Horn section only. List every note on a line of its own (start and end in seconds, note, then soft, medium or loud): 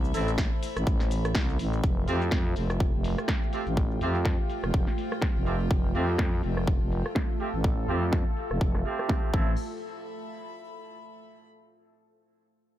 0.14 0.30 A3 loud
0.14 0.30 C4 medium
0.14 0.30 E4 medium
0.14 0.30 A4 loud
2.08 2.23 A3 medium
2.08 2.23 C4 medium
2.08 2.23 F4 medium
2.08 2.23 G4 loud
3.53 3.63 A3 medium
3.53 3.63 C4 medium
3.53 3.63 F4 medium
3.53 3.63 G4 medium
4.01 4.17 A3 medium
4.01 4.17 C4 medium
4.01 4.17 F4 medium
4.01 4.17 G4 loud
5.46 5.57 A3 medium
5.46 5.57 C4 medium
5.46 5.57 F4 medium
5.46 5.57 G4 medium
5.95 6.10 A3 medium
5.95 6.10 C4 medium
5.95 6.10 F4 medium
5.95 6.10 G4 loud
7.40 7.50 A3 medium
7.40 7.50 C4 medium
7.40 7.50 F4 medium
7.40 7.50 G4 medium
7.88 8.04 A3 medium
7.88 8.04 C4 medium
7.88 8.04 F4 medium
7.88 8.04 G4 loud
8.85 9.31 A3 medium
8.85 9.31 C4 medium
8.85 9.31 F4 medium
8.85 9.31 G4 medium
9.34 9.52 A3 medium
9.34 9.52 C4 medium
9.34 9.52 E4 medium
9.34 9.52 A4 medium